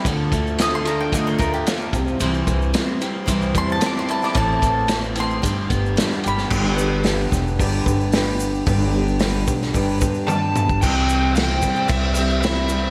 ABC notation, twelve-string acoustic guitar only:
X:1
M:4/4
L:1/8
Q:1/4=111
K:C
V:1 name="Twelve-string acoustic guitar"
[D,A,DFA]2 [A,DFA] [DFA] [D,A,DFA]2 [A,DFA] [G,CEc] | [C,E,G,CEc]2 [G,CEc] [G,CEc] [C,E,G,CEc]2 [G,CEc] [G,CEc] | [A,,E,A,CEc]2 [A,CEc] [A,CEc] [G,DG]2 [G,DGB]2 | [G,DGB] [DGB] [G,DGB] [DGB] [G,DGB] [DGB] [G,DGB]2 |
[G,DGB] [DGB] [G,DGB] [DGB] [G,DGB] [DGB] [G,DGB]2 | [C,E,G,CEc]3 [G,CEc] [G,CEc] [G,CEc] [G,CEc] [G,CEc] |]